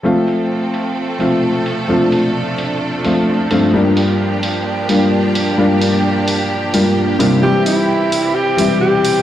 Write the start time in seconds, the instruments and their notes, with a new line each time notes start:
0.03 grand piano F3 A3 C4 F4, string section F3 A3 C4 A4
0.28 open hi-hat
0.74 open hi-hat
1.19 grand piano F3 A3 C4 F4, open hi-hat
1.66 open hi-hat
1.88 grand piano F3 A3 C4 F4, string section D4
2.12 open hi-hat
2.58 open hi-hat
3.04 grand piano F3 A3 C4 F4, open hi-hat
3.50 grand piano G2 F3 A3 C4 F4, open hi-hat
3.73 grand piano G2 G3 A#3 D4 F4, string section A#3 D4 G4
3.97 open hi-hat
4.43 open hi-hat
4.88 grand piano G2 G3 A#3 D4 F4, open hi-hat
5.35 open hi-hat
5.57 grand piano G2 G3 A#3 D4 F4
5.82 open hi-hat
6.28 open hi-hat
6.73 grand piano G2 G3 A#3 D4 F4, open hi-hat
7.19 grand piano C3 G3 A#3 D4 F4, open hi-hat
7.42 grand piano E3 G3 C4 E4, string section E3 G3 C4, alto saxophone G4
7.66 alto saxophone E4, open hi-hat
8.12 open hi-hat
8.35 alto saxophone G4
8.57 grand piano E3 G3 C4 E4, open hi-hat
8.81 alto saxophone G4
9.05 open hi-hat